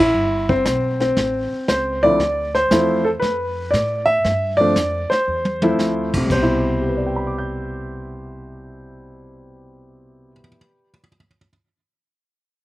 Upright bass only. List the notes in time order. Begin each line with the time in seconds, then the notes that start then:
Already playing: A1
0.14 G1
0.65 B1
1.17 A1
1.52 muted upright bass stroke
1.68 C#2
2.20 D2
2.71 E2
3.22 F2
3.73 A2
4.25 G2
4.76 F2
5.11 muted upright bass stroke
5.28 E2
5.79 D2
6.30 C2